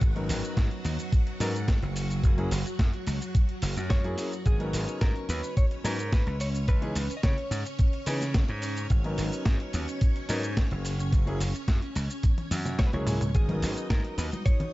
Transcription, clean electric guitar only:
3.91 4.42 C#5 loud
4.46 4.98 G#4 loud
5.02 5.27 A#4 medium
5.30 5.57 B4 loud
5.57 5.65 C#5 loud
5.86 6.13 A#4 medium
6.13 6.40 B4 medium
6.41 6.48 C#5 loud
6.69 7.16 B4 loud
7.17 7.23 D#5 medium
7.24 8.31 C#5 medium
12.79 12.86 C#5 loud
12.87 12.93 B4 medium
12.94 13.36 C#5 loud
13.35 13.86 G#4 medium
13.90 14.18 A#4 medium
14.18 14.26 B4 loud
14.46 14.73 C#5 loud

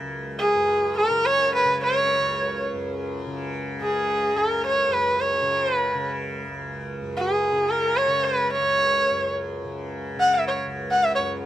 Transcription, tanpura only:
0.00 2.19 C#2 medium
0.00 0.55 F#2 medium
0.00 1.10 C#3 medium
0.55 2.73 F#2 medium
1.10 1.65 C#3 medium
1.65 3.27 C#3 medium
2.19 4.35 C#2 medium
2.74 4.88 F#2 medium
3.27 3.82 C#3 medium
3.82 5.42 C#3 medium
4.35 6.48 C#2 medium
4.89 7.01 F#2 medium
5.42 5.95 C#3 medium
5.95 7.52 C#3 medium
6.48 8.59 C#2 medium
7.02 9.11 F#2 medium
7.52 8.08 C#3 medium
8.08 9.65 C#3 medium
8.59 10.66 C#2 medium
9.11 11.18 F#2 medium
9.65 10.16 C#3 medium
10.16 11.46 C#3 medium
10.66 11.46 C#2 medium
11.18 11.46 F#2 medium

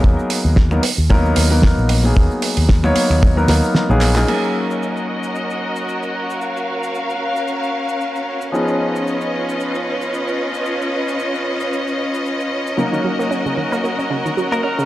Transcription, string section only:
4.28 14.85 C#4 medium
4.28 8.49 F#4 medium
4.28 8.49 A#4 medium
4.28 6.39 D#5 medium
6.40 8.51 F5 medium
8.53 12.74 F4 medium
8.53 12.74 B4 medium
8.53 14.85 D#5 medium
12.78 14.85 F#4 medium
12.78 14.85 A#4 medium

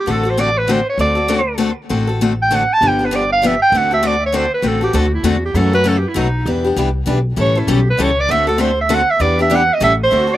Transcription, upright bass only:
0.07 0.80 A1 medium
0.98 1.71 D2 medium
1.90 2.63 A1 medium
2.81 3.54 G1 medium
3.72 4.46 D2 medium
4.63 4.88 A1 medium
4.93 5.20 D2 medium
5.23 5.50 E2 medium
5.54 6.04 F#2 loud
6.15 6.40 B1 medium
6.46 6.70 E2 medium
6.76 7.03 C2 medium
7.07 7.33 B1 medium
7.37 7.62 A1 medium
7.67 7.94 B1 medium
7.98 8.24 C#2 medium
8.29 9.02 D2 medium
9.20 9.69 E2 loud
9.81 10.05 A1 loud
10.12 10.37 D2 medium

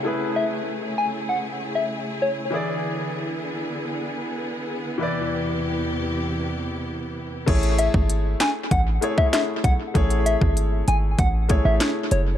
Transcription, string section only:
0.00 2.49 C#3 medium
0.00 2.49 A3 medium
0.00 7.44 E4 medium
0.00 4.96 G#4 medium
2.53 4.98 D3 medium
2.53 7.44 B3 medium
5.00 7.45 E2 medium
5.00 7.45 C3 medium
5.00 7.45 G4 medium

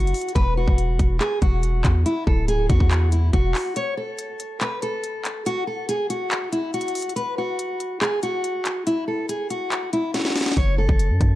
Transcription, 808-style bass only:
0.00 0.13 F#1 loud
0.36 0.66 E1 loud
0.68 0.98 E1 loud
0.99 1.20 E1 loud
1.42 1.83 E1 loud
1.85 2.05 E2 loud
2.27 2.68 D1 loud
2.70 3.31 E2 loud
3.33 3.54 E1 loud
10.57 10.88 F#1 loud
10.89 11.12 F#1 loud
11.10 11.20 F#2 loud
11.21 11.35 F#2 loud

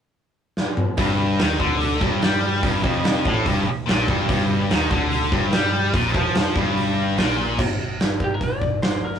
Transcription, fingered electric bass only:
0.98 1.37 G1 loud
1.40 1.59 D#2 loud
1.60 1.99 D2 medium
2.02 2.21 G1 medium
2.21 2.60 G2 loud
2.63 2.83 G1 loud
2.83 3.22 F1 medium
3.26 3.45 A1 medium
3.46 3.65 G1 medium
3.68 muted fingered electric bass stroke soft
3.89 4.07 A#1 loud
4.09 4.28 G1 medium
4.30 4.68 G1 medium
4.71 4.90 D#2 loud
4.91 5.29 D2 medium
5.31 5.51 G1 medium
5.53 5.91 G2 loud
5.94 6.13 A#1 loud
6.14 6.53 F2 medium
6.56 7.14 G1 medium
7.18 7.59 A#1 medium
7.59 7.76 G1 medium
7.80 7.97 G1 medium
7.99 8.17 G1 medium
8.21 8.38 G1 medium
8.41 8.59 G1 medium
8.61 8.79 G1 medium
8.81 8.99 G1 medium
9.03 9.19 G1 medium

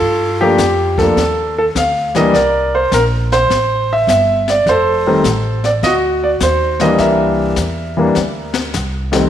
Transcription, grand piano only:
0.00 0.96 F4 medium
0.00 0.42 A4 medium
0.41 0.58 F3 medium
0.41 0.59 A3 medium
0.41 0.59 A#3 medium
0.41 0.59 D4 medium
0.41 1.01 G4 medium
0.98 1.17 F3 medium
0.98 1.17 A3 soft
0.98 1.17 A#3 soft
0.98 1.17 D4 medium
0.98 1.53 A4 medium
1.58 1.63 A4 medium
1.78 2.13 F5 medium
2.15 2.33 E3 medium
2.15 2.33 G3 medium
2.15 2.34 A#3 medium
2.15 2.34 D4 medium
2.15 2.34 D#5 medium
2.34 2.92 A#4 medium
2.34 2.74 D5 medium
2.75 2.94 C5 medium
2.94 3.02 A#4 medium
3.33 3.92 C5 loud
3.93 4.08 E5 medium
4.10 4.46 E5 medium
4.50 4.69 D5 medium
4.69 5.82 A4 medium
4.69 5.61 C5 medium
5.07 5.24 D#3 medium
5.07 5.24 G3 medium
5.07 5.24 A3 medium
5.07 5.25 C4 medium
5.65 5.70 D5 medium
5.84 6.97 F#4 medium
5.84 5.92 D#5 medium
6.24 6.29 D5 medium
6.43 6.83 C5 medium
6.81 7.55 E3 medium
6.81 7.55 G3 medium
6.81 7.55 A#3 medium
6.81 7.55 D4 medium
6.81 6.93 D#5 medium
6.95 7.00 D#5 medium
6.99 8.71 A#4 medium
6.99 8.70 E5 medium
7.97 8.14 E3 medium
7.97 8.15 G3 medium
7.97 8.15 A#3 medium
7.97 8.16 D4 medium
9.12 9.29 F2 medium
9.12 9.29 D#3 medium
9.12 9.29 G3 medium
9.12 9.29 A3 medium
9.12 9.29 C4 medium

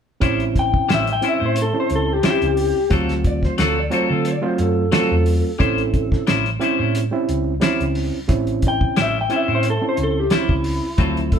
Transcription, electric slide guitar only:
3.27 3.44 D5 medium
3.45 3.59 C5 medium
3.61 3.77 A4 medium
3.79 3.93 D5 medium
3.94 4.11 C5 medium
4.12 4.26 A4 medium
4.27 4.44 D5 medium
4.46 4.60 C5 medium
4.60 4.92 A4 medium
4.94 6.24 A4 medium
11.33 11.39 A4 medium

